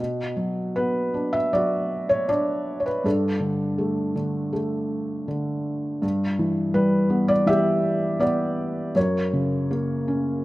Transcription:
0, 0, Header, 1, 2, 480
1, 0, Start_track
1, 0, Key_signature, 2, "minor"
1, 0, Tempo, 763359
1, 1918, Time_signature, 4, 2, 24, 8
1, 2393, Tempo, 742574
1, 3833, Tempo, 726392
1, 5273, Tempo, 754717
1, 6693, End_track
2, 0, Start_track
2, 0, Title_t, "Felt piano"
2, 0, Program_c, 0, 0
2, 0, Control_c, 0, 64, 127
2, 0, Note_on_c, 0, 47, 47
2, 2, Control_c, 0, 64, 0
2, 119, Control_c, 0, 64, 127
2, 230, Note_on_c, 0, 54, 39
2, 477, Note_on_c, 0, 71, 65
2, 487, Note_on_c, 0, 59, 45
2, 717, Note_on_c, 0, 62, 40
2, 834, Note_on_c, 0, 76, 72
2, 852, Note_off_c, 0, 71, 0
2, 951, Note_off_c, 0, 76, 0
2, 952, Note_off_c, 0, 54, 0
2, 962, Note_on_c, 0, 54, 40
2, 962, Note_on_c, 0, 74, 70
2, 976, Note_on_c, 0, 66, 53
2, 1296, Note_off_c, 0, 74, 0
2, 1316, Note_on_c, 0, 73, 67
2, 1418, Note_off_c, 0, 59, 0
2, 1426, Note_off_c, 0, 62, 0
2, 1436, Note_on_c, 0, 62, 44
2, 1440, Note_on_c, 0, 74, 68
2, 1442, Note_off_c, 0, 73, 0
2, 1760, Note_on_c, 0, 73, 47
2, 1778, Note_off_c, 0, 74, 0
2, 1794, Note_off_c, 0, 73, 0
2, 1798, Note_on_c, 0, 71, 59
2, 1890, Note_off_c, 0, 47, 0
2, 1891, Note_off_c, 0, 54, 0
2, 1899, Note_off_c, 0, 66, 0
2, 1901, Note_off_c, 0, 62, 0
2, 1912, Note_on_c, 0, 43, 51
2, 1921, Note_off_c, 0, 71, 0
2, 1921, Note_on_c, 0, 69, 57
2, 1927, Control_c, 0, 64, 0
2, 1927, Note_on_c, 0, 62, 43
2, 2051, Control_c, 0, 64, 127
2, 2139, Note_on_c, 0, 50, 40
2, 2379, Note_on_c, 0, 57, 45
2, 2607, Note_off_c, 0, 69, 0
2, 2609, Note_off_c, 0, 50, 0
2, 2619, Note_on_c, 0, 50, 40
2, 2847, Note_off_c, 0, 62, 0
2, 2850, Note_off_c, 0, 57, 0
2, 2859, Note_on_c, 0, 57, 45
2, 3336, Note_off_c, 0, 50, 0
2, 3346, Note_on_c, 0, 50, 42
2, 3802, Note_off_c, 0, 57, 0
2, 3803, Note_off_c, 0, 43, 0
2, 3815, Note_off_c, 0, 50, 0
2, 3824, Note_on_c, 0, 43, 52
2, 3840, Control_c, 0, 64, 0
2, 3956, Control_c, 0, 64, 127
2, 4069, Note_on_c, 0, 52, 44
2, 4301, Note_on_c, 0, 71, 70
2, 4302, Note_on_c, 0, 55, 48
2, 4537, Note_on_c, 0, 59, 44
2, 4659, Note_on_c, 0, 74, 77
2, 4671, Note_off_c, 0, 71, 0
2, 4768, Note_off_c, 0, 52, 0
2, 4778, Note_on_c, 0, 52, 44
2, 4784, Note_on_c, 0, 76, 83
2, 4785, Note_off_c, 0, 74, 0
2, 4797, Note_on_c, 0, 67, 61
2, 5241, Note_off_c, 0, 55, 0
2, 5251, Note_off_c, 0, 59, 0
2, 5261, Note_on_c, 0, 59, 45
2, 5267, Note_on_c, 0, 74, 70
2, 5285, Note_off_c, 0, 76, 0
2, 5719, Note_off_c, 0, 43, 0
2, 5720, Note_off_c, 0, 52, 0
2, 5721, Note_off_c, 0, 74, 0
2, 5729, Note_off_c, 0, 59, 0
2, 5729, Note_off_c, 0, 67, 0
2, 5744, Note_on_c, 0, 42, 53
2, 5749, Note_on_c, 0, 73, 60
2, 5755, Note_on_c, 0, 70, 44
2, 5757, Control_c, 0, 64, 0
2, 5870, Control_c, 0, 64, 127
2, 5986, Note_on_c, 0, 49, 40
2, 6202, Note_off_c, 0, 73, 0
2, 6223, Note_on_c, 0, 58, 44
2, 6459, Note_on_c, 0, 61, 38
2, 6690, Note_off_c, 0, 70, 0
2, 6693, Note_off_c, 0, 42, 0
2, 6693, Note_off_c, 0, 49, 0
2, 6693, Note_off_c, 0, 58, 0
2, 6693, Note_off_c, 0, 61, 0
2, 6693, End_track
0, 0, End_of_file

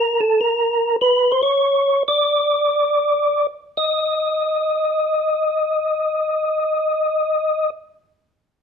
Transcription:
0, 0, Header, 1, 2, 480
1, 0, Start_track
1, 0, Tempo, 609756
1, 781, Time_signature, 4, 2, 24, 8
1, 1278, Tempo, 687285
1, 2238, Tempo, 762389
1, 2718, Tempo, 793651
1, 5661, End_track
2, 0, Start_track
2, 0, Title_t, "Tonewheel organ"
2, 0, Program_c, 0, 16
2, 0, Note_on_c, 0, 70, 87
2, 161, Note_on_c, 0, 69, 76
2, 166, Note_off_c, 0, 70, 0
2, 315, Note_off_c, 0, 69, 0
2, 321, Note_on_c, 0, 70, 80
2, 757, Note_off_c, 0, 70, 0
2, 798, Note_on_c, 0, 71, 99
2, 1037, Note_on_c, 0, 72, 69
2, 1042, Note_off_c, 0, 71, 0
2, 1115, Note_off_c, 0, 72, 0
2, 1123, Note_on_c, 0, 73, 89
2, 1563, Note_off_c, 0, 73, 0
2, 1597, Note_on_c, 0, 74, 100
2, 2534, Note_off_c, 0, 74, 0
2, 2725, Note_on_c, 0, 75, 76
2, 5102, Note_off_c, 0, 75, 0
2, 5661, End_track
0, 0, End_of_file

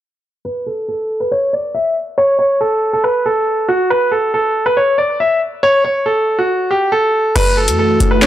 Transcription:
0, 0, Header, 1, 5, 480
1, 0, Start_track
1, 0, Tempo, 431655
1, 500, Time_signature, 4, 2, 24, 8
1, 9192, End_track
2, 0, Start_track
2, 0, Title_t, "Grand piano"
2, 0, Program_c, 0, 0
2, 500, Note_on_c, 0, 71, 102
2, 712, Note_off_c, 0, 71, 0
2, 739, Note_on_c, 0, 69, 76
2, 952, Note_off_c, 0, 69, 0
2, 984, Note_on_c, 0, 69, 77
2, 1320, Note_off_c, 0, 69, 0
2, 1338, Note_on_c, 0, 71, 76
2, 1445, Note_off_c, 0, 71, 0
2, 1463, Note_on_c, 0, 73, 93
2, 1674, Note_off_c, 0, 73, 0
2, 1703, Note_on_c, 0, 74, 72
2, 1914, Note_off_c, 0, 74, 0
2, 1941, Note_on_c, 0, 76, 86
2, 2153, Note_off_c, 0, 76, 0
2, 2420, Note_on_c, 0, 73, 103
2, 2633, Note_off_c, 0, 73, 0
2, 2655, Note_on_c, 0, 73, 85
2, 2870, Note_off_c, 0, 73, 0
2, 2898, Note_on_c, 0, 69, 91
2, 3237, Note_off_c, 0, 69, 0
2, 3262, Note_on_c, 0, 69, 85
2, 3367, Note_off_c, 0, 69, 0
2, 3378, Note_on_c, 0, 71, 87
2, 3591, Note_off_c, 0, 71, 0
2, 3622, Note_on_c, 0, 69, 82
2, 4072, Note_off_c, 0, 69, 0
2, 4098, Note_on_c, 0, 66, 85
2, 4312, Note_off_c, 0, 66, 0
2, 4341, Note_on_c, 0, 71, 88
2, 4553, Note_off_c, 0, 71, 0
2, 4577, Note_on_c, 0, 69, 73
2, 4791, Note_off_c, 0, 69, 0
2, 4825, Note_on_c, 0, 69, 83
2, 5161, Note_off_c, 0, 69, 0
2, 5180, Note_on_c, 0, 71, 80
2, 5286, Note_off_c, 0, 71, 0
2, 5303, Note_on_c, 0, 73, 84
2, 5514, Note_off_c, 0, 73, 0
2, 5538, Note_on_c, 0, 74, 72
2, 5751, Note_off_c, 0, 74, 0
2, 5784, Note_on_c, 0, 76, 78
2, 5995, Note_off_c, 0, 76, 0
2, 6261, Note_on_c, 0, 73, 105
2, 6473, Note_off_c, 0, 73, 0
2, 6500, Note_on_c, 0, 73, 81
2, 6712, Note_off_c, 0, 73, 0
2, 6736, Note_on_c, 0, 69, 75
2, 7077, Note_off_c, 0, 69, 0
2, 7101, Note_on_c, 0, 66, 77
2, 7439, Note_off_c, 0, 66, 0
2, 7457, Note_on_c, 0, 67, 82
2, 7671, Note_off_c, 0, 67, 0
2, 7695, Note_on_c, 0, 69, 85
2, 8149, Note_off_c, 0, 69, 0
2, 8179, Note_on_c, 0, 71, 108
2, 8392, Note_off_c, 0, 71, 0
2, 8418, Note_on_c, 0, 69, 82
2, 8632, Note_off_c, 0, 69, 0
2, 8664, Note_on_c, 0, 69, 82
2, 9001, Note_off_c, 0, 69, 0
2, 9017, Note_on_c, 0, 71, 81
2, 9125, Note_off_c, 0, 71, 0
2, 9143, Note_on_c, 0, 73, 97
2, 9192, Note_off_c, 0, 73, 0
2, 9192, End_track
3, 0, Start_track
3, 0, Title_t, "Ambient pad"
3, 0, Program_c, 1, 92
3, 8179, Note_on_c, 1, 52, 84
3, 8179, Note_on_c, 1, 66, 93
3, 8180, Note_on_c, 1, 57, 78
3, 9192, Note_off_c, 1, 52, 0
3, 9192, Note_off_c, 1, 57, 0
3, 9192, Note_off_c, 1, 66, 0
3, 9192, End_track
4, 0, Start_track
4, 0, Title_t, "808-style bass"
4, 0, Program_c, 2, 38
4, 8180, Note_on_c, 2, 30, 108
4, 8539, Note_on_c, 2, 42, 100
4, 8556, Note_off_c, 2, 30, 0
4, 8882, Note_off_c, 2, 42, 0
4, 8899, Note_on_c, 2, 30, 104
4, 9192, Note_off_c, 2, 30, 0
4, 9192, End_track
5, 0, Start_track
5, 0, Title_t, "Drums"
5, 8180, Note_on_c, 9, 42, 71
5, 8180, Note_on_c, 9, 49, 99
5, 8291, Note_off_c, 9, 42, 0
5, 8291, Note_off_c, 9, 49, 0
5, 8539, Note_on_c, 9, 42, 98
5, 8650, Note_off_c, 9, 42, 0
5, 8900, Note_on_c, 9, 42, 77
5, 9011, Note_off_c, 9, 42, 0
5, 9140, Note_on_c, 9, 38, 112
5, 9141, Note_on_c, 9, 42, 88
5, 9146, Note_on_c, 9, 39, 92
5, 9192, Note_off_c, 9, 38, 0
5, 9192, Note_off_c, 9, 39, 0
5, 9192, Note_off_c, 9, 42, 0
5, 9192, End_track
0, 0, End_of_file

